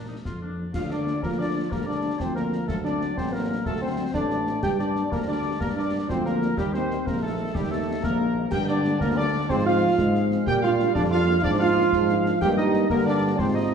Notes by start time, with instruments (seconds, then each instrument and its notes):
Already playing: tuba A#2, euphonium A#3, trumpet section A#4
0.09 french horn section F3 A#3 D4, woodwind section D#4
0.25 tuba F2, woodwind section F4, concert bass drum, snare
0.42 french horn section F3 A#3 D4, woodwind section D4
0.58 french horn section F3 A#3 D4
0.74 tuba D2, trombone section D3, euphonium F4, trumpet section F5, woodwind section F5, concert bass drum, snare, crash
0.90 french horn section F3 A#3 D4, euphonium D4, trumpet section D5, woodwind section D5, snare
1.06 french horn section F3 A#3 D4, snare
1.22 tuba D2, trombone section F3, euphonium A#3, trumpet section A#4, woodwind section A#4, concert bass drum, snare
1.38 french horn section F3 A#3 D4, euphonium D4, trumpet section D5, woodwind section D5
1.54 french horn section F3 A#3 D4
1.71 tuba D2, trombone section G3, euphonium A#3, trumpet section A#4, woodwind section A#4, concert bass drum, snare
1.86 french horn section F3 A#3 D4, euphonium D4, woodwind section D5, trumpet section D5
2.03 french horn section F3 A#3 D4
2.19 tuba D2, trombone section F3, euphonium C4, woodwind section C5, trumpet section C5, concert bass drum, snare
2.35 french horn section F3 A#3 D4, euphonium A#3, trumpet section A#4, woodwind section A#4, snare
2.52 french horn section F3 A#3 D4, snare
2.68 tuba D2, trombone section F#3, euphonium A3, woodwind section A4, trumpet section A4, concert bass drum, snare
2.84 french horn section F#3 C4 D4, euphonium D4, woodwind section D5, trumpet section D5, snare
3.01 french horn section F#3 C4 D4, snare
3.17 tuba A1, euphonium C4, woodwind section C5, trumpet section C5, concert bass drum, snare
3.33 french horn section F#3 C4 D4, euphonium A#3, woodwind section A#4, trumpet section A#4
3.49 french horn section F#3 C4 D4
3.66 tuba D2, trombone section F#3, euphonium A3, trumpet section A4, woodwind section A4, concert bass drum, snare
3.81 french horn section F#3 C4 D4, euphonium C4, trumpet section C5, woodwind section C5
3.98 french horn section F#3 C4 D4
4.13 tuba A1, trombone section A3, euphonium D4, trumpet section D5, woodwind section D5, concert bass drum, snare
4.30 french horn section F#3 C4 D4, snare
4.46 french horn section F#3 C4 D4, snare
4.63 tuba G2, trombone section G3, euphonium G4, trumpet section G5, woodwind section G5, concert bass drum, snare, crash
4.79 french horn section G3 A#3 D4, euphonium D4, trumpet section D5, woodwind section D5, snare
4.95 french horn section G3 A#3 D4, snare
5.12 tuba D2, euphonium A#3, trumpet section A#4, woodwind section A#4, concert bass drum, snare
5.27 french horn section G3 A#3 D4, euphonium D4, trumpet section D5, woodwind section D5
5.45 french horn section G3 A#3 D4
5.60 tuba G2, euphonium A#3, trumpet section A#4, woodwind section A#4, concert bass drum, snare
5.76 french horn section G3 A#3 D4, euphonium D4, trumpet section D5, woodwind section D5
5.93 french horn section G3 A#3 D4
6.08 tuba D2, trombone section F3, euphonium C4, trumpet section C5, woodwind section C5, concert bass drum, snare
6.25 french horn section G3 A#3 D4, euphonium A#3, trumpet section A#4, woodwind section A#4, snare
6.41 french horn section G3 A#3 D4, snare
6.57 tuba D#2, trombone section D#3, euphonium G3, woodwind section G4, trumpet section G4, concert bass drum, snare
6.73 french horn section G3 A#3 D#4, euphonium C4, woodwind section C5, trumpet section C5, snare
6.90 french horn section G3 A#3 D#4, snare
7.06 tuba A#1, euphonium A#3, trumpet section A#4, woodwind section A#4, concert bass drum, snare
7.22 french horn section G3 A#3 D#4, euphonium A3, trumpet section A4, woodwind section A4
7.38 french horn section G3 A#3 D#4
7.55 tuba D#2, euphonium G3, trumpet section G4, woodwind section G4, concert bass drum, snare
7.71 french horn section G3 A#3 D#4, euphonium A3, trumpet section A4, woodwind section A4
7.87 french horn section G3 A#3 D#4
8.03 tuba A#1, euphonium A#3, woodwind section A#4, trumpet section A#4, concert bass drum, snare
8.20 french horn section G3 A#3 D#4
8.36 french horn section G3 A#3 D#4
8.51 tuba G2, trombone section D3, euphonium G4, trumpet section G5, woodwind section G5, concert bass drum, snare, crash
8.68 french horn section G3 A#3 D4, euphonium D4, trumpet section D5, woodwind section D5, snare
8.84 french horn section G3 A#3 D4, snare
9.00 tuba D2, euphonium A#3, trumpet section A#4, woodwind section A#4, concert bass drum, snare
9.17 french horn section G3 A#3 D4, euphonium D4, woodwind section D5, trumpet section D5
9.34 french horn section G3 A#3 D4
9.49 tuba G#2, trombone section F3, euphonium C4, trumpet section C5, woodwind section C5, concert bass drum, snare
9.66 french horn section F3 C4 F4, euphonium F4, woodwind section F5, trumpet section F5
9.82 french horn section F3 C4 F4
9.98 tuba G#2, trombone section G#3, concert bass drum, snare
10.14 french horn section F3 C4 F4, snare
10.30 french horn section F3 C4 F4, snare
10.46 tuba A#2, trombone section G3, euphonium G4, trumpet section G5, woodwind section G5, concert bass drum, snare
10.62 french horn section A#3 D4 F4, euphonium F4, trumpet section F5, woodwind section F5, snare
10.79 french horn section A#3 D4 F4, snare
10.95 tuba F2, euphonium D4, trumpet section D5, woodwind section D5, concert bass drum, snare
11.11 french horn section A#3 D4, euphonium F4, trumpet section F5, woodwind section F5
11.27 french horn section A#3 D4 F4
11.44 tuba G#2, trombone section F3, euphonium D4, trumpet section D5, woodwind section D5, concert bass drum, snare
11.60 french horn section A#3 D4 F4, euphonium F4, trumpet section F5, woodwind section F5
11.76 french horn section A#3 D4 F4
11.93 tuba G#2, trombone section F3, concert bass drum, snare
12.08 french horn section A#3 D4 F4, snare
12.25 french horn section A#3 D4 F4, snare
12.41 tuba G2, trombone section D#3, french horn section A#3 G4, euphonium G4, trumpet section G5, woodwind section G5, concert bass drum, snare, crash
12.57 euphonium D#4, trumpet section D#5, woodwind section D#5, snare
12.73 snare
12.89 tuba G2, trombone section D3, french horn section A#3 G4, euphonium A#3, trumpet section A#4, woodwind section A#4, concert bass drum, snare
13.05 euphonium D4, trumpet section D5, woodwind section D5
13.38 tuba G#2, trombone section C3, french horn section G#3 C4 F4, euphonium C4, trumpet section C5, woodwind section C5, concert bass drum, snare
13.54 euphonium D#4, trumpet section D#5, woodwind section D#5